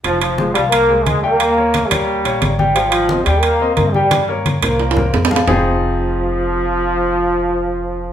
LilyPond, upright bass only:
\new Staff \with { instrumentName = "Upright bass" } { \clef bass \time 4/4 \key f \minor \tempo 4 = 177 f,,4. c,4. ees,4~ | ees,4. ees,4 bes,,8 aes,,4~ | aes,,4. ees,4. g,4~ | g,4. c,4. f,4 |
f,,1~ | f,,1 | }